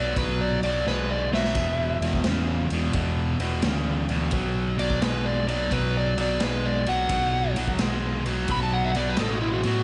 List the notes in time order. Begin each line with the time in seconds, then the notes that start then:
Already playing: B1 B2 F#3 D5
0.16 B1 B2 F#3 B4, kick, ride
0.41 D5
0.63 B1 B2 F#3 D5, ride
0.86 B1 B2 G#3 B4, snare
1.10 D5
1.31 B1 B2 F#3 E5, snare
1.44 snare
1.55 E1 E2 B2, kick, ride, splash
2.01 E1 E2 B2, ride
2.13 kick, snare
2.24 E1 E2 C#3, snare, ride
2.70 E1 E2 B2, ride
2.93 E1 E2 B2, kick, ride
3.40 E1 E2 B2, ride
3.62 D2 E2 C#3, snare, ride
4.09 D2 E2 B2, ride
4.31 B1 B2 F#3, kick, ride
4.78 B1 B2 F#3 D5, ride
4.90 kick, snare
5.02 B1 B2 G#3 B4, snare, ride
5.26 D5
5.47 B2 F#3 D5, ride
5.70 B1 B2 F#3 B4, kick, ride
5.97 D5
6.17 B1 B2 F#3 D5, ride
6.40 B1 B2 G#3, snare, ride
6.44 B4
6.65 D5
6.86 B1 B2 F#3 F#5, ride
7.09 B1 B2 F#3, kick, ride
7.56 B1 B2 F#3, ride
7.68 kick
7.79 B1 B2 G#3, snare, ride
8.24 B1 B2 F#3, ride
8.48 B1 B2 F#3 B5, kick, ride
8.63 A5
8.73 F#5
8.84 E5
8.95 B1 B2 F#3 D5, ride
9.09 B4
9.17 A1 B2 G#3 A4, snare, ride
9.31 F#4
9.42 E4
9.53 F#4
9.63 A2 B2 F#3, ride